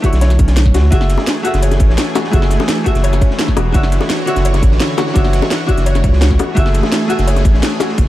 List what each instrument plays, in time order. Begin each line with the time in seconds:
Already playing: felt piano C#4 F#4 C#5
0.02 hollow-body jazz guitar D3 A3 E4 C#5, felt piano F#4, kick, closed hi-hat, ride
0.13 sub bass B1, snare, closed hi-hat
0.21 felt piano C#5, snare, closed hi-hat, ride
0.30 snare, closed hi-hat
0.39 sub bass B1, felt piano C#4, kick, closed hi-hat, ride
0.48 snare, closed hi-hat, ride
0.57 snare, closed hi-hat
0.66 kick, snare
0.74 sub bass D2, felt piano F#4, snare, closed hi-hat, ride
0.90 sub bass F#1, analog synth pad E3 A3 G#4, hollow-body jazz guitar A3 F#4 G#4 E5, felt piano F#4, kick, closed hi-hat, ride
1.01 snare
1.10 snare, closed hi-hat, ride
1.18 snare, high bongo
1.26 snare, closed hi-hat, ride
1.43 hollow-body jazz guitar A3 F#4 G#4 E5, felt piano F#4, closed hi-hat, ride
1.54 sub bass F#1, snare, closed hi-hat
1.62 felt piano C#5, closed hi-hat, ride
1.71 snare, closed hi-hat, high bongo
1.80 sub bass A1, felt piano C#4, kick, closed hi-hat, ride
1.90 snare
1.98 snare, closed hi-hat, ride
2.15 felt piano F#4, snare, closed hi-hat, ride, high bongo
2.24 snare
2.31 sub bass F#1, hollow-body jazz guitar A3 F#4 G#4 E5, felt piano F#4, kick, closed hi-hat, ride
2.42 snare
2.50 snare, closed hi-hat, ride
2.60 snare, high bongo
2.68 snare, closed hi-hat, ride
2.78 ride
2.84 hollow-body jazz guitar A3 F#4 G#4 E5, felt piano F#4, kick, closed hi-hat, ride
2.95 sub bass F#1, snare, closed hi-hat
3.04 felt piano C#5, closed hi-hat, ride
3.13 snare, closed hi-hat, high bongo
3.21 felt piano C#4, kick, closed hi-hat, ride
3.31 snare
3.39 snare, closed hi-hat, ride
3.48 kick, snare
3.57 sub bass E1, felt piano F#4, closed hi-hat, ride, high bongo
3.72 sub bass F#1, hollow-body jazz guitar D4 F#4 C#5 E5, felt piano F#4, analog synth pad F#4 C#5, kick, closed hi-hat, ride
3.83 snare
3.92 snare, closed hi-hat, ride
4.01 snare, high bongo
4.09 snare, closed hi-hat, ride
4.26 hollow-body jazz guitar D3 F#4 C#5 E5, felt piano F#4, closed hi-hat, ride
4.36 sub bass F#1, snare, closed hi-hat
4.45 felt piano C#5, closed hi-hat, ride
4.54 snare, closed hi-hat, high bongo
4.63 sub bass A1, felt piano C#4, kick, closed hi-hat, ride
4.72 snare
4.80 snare, closed hi-hat, ride
4.98 felt piano F#4, snare, closed hi-hat, ride, high bongo
5.07 snare
5.14 sub bass F#1, hollow-body jazz guitar D4 F#4 C#5 E5, felt piano F#4, kick, closed hi-hat, ride
5.24 snare
5.33 snare, closed hi-hat, ride
5.42 snare, high bongo
5.50 snare, closed hi-hat, ride
5.60 ride
5.66 hollow-body jazz guitar D4 F#4 C#5 E5, felt piano F#4, kick, closed hi-hat, ride
5.77 sub bass F#1, snare, closed hi-hat
5.86 felt piano C#5, closed hi-hat, ride
5.95 snare, closed hi-hat, high bongo
6.04 sub bass C#2, felt piano C#5, kick, closed hi-hat, ride
6.13 sub bass C#2, snare
6.21 felt piano C#4, snare, closed hi-hat, ride
6.30 kick, snare
6.39 analog synth pad A3 G#4, felt piano F#4, closed hi-hat, ride, high bongo
6.55 sub bass F#1, hollow-body jazz guitar A3 F#4 G#4 E5, felt piano F#4, kick, closed hi-hat, ride
6.66 snare
6.74 snare, closed hi-hat, ride
6.83 snare, high bongo
6.92 snare, closed hi-hat, ride
7.08 hollow-body jazz guitar A3 F#4 G#4 E5, felt piano F#4, closed hi-hat, ride
7.18 sub bass F#1, snare, closed hi-hat
7.27 felt piano C#5, closed hi-hat, ride
7.36 snare, closed hi-hat, high bongo
7.45 sub bass A1, felt piano C#4, kick, closed hi-hat, ride
7.54 snare
7.62 snare, closed hi-hat, ride
7.80 felt piano F#4, snare, closed hi-hat, ride, high bongo
7.89 snare
7.98 sub bass F#1, kick, closed hi-hat, ride